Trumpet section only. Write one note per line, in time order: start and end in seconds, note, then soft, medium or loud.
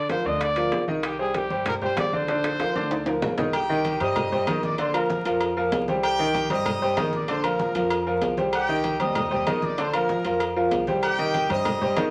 3.54 3.98 G4 medium
3.54 3.97 G5 loud
4.02 4.64 D#5 loud
4.02 4.64 D#6 medium
4.64 4.78 D5 medium
4.64 4.78 D6 medium
4.80 4.95 C5 loud
4.80 4.95 C6 medium
4.95 5.53 A#4 medium
4.95 5.53 A#5 medium
6.05 6.48 G4 medium
6.05 6.48 G5 loud
6.51 7.09 D#5 loud
6.51 7.09 D#6 medium
7.13 7.27 D5 medium
7.13 7.28 D6 medium
7.29 7.43 C5 loud
7.29 7.44 C6 medium
7.44 8.07 A#4 medium
7.44 8.07 A#5 medium
8.54 8.98 G4 loud
8.54 8.97 G5 loud
9.02 9.63 D#5 loud
9.02 9.63 D#6 medium
9.64 9.79 D5 loud
9.64 9.79 D6 medium
9.79 9.94 C5 loud
9.79 9.94 C6 medium
9.94 10.52 A#4 medium
9.94 10.53 A#5 medium
11.04 11.48 G4 loud
11.04 11.47 G5 loud
11.51 12.09 D#5 loud
11.51 12.09 D#6 medium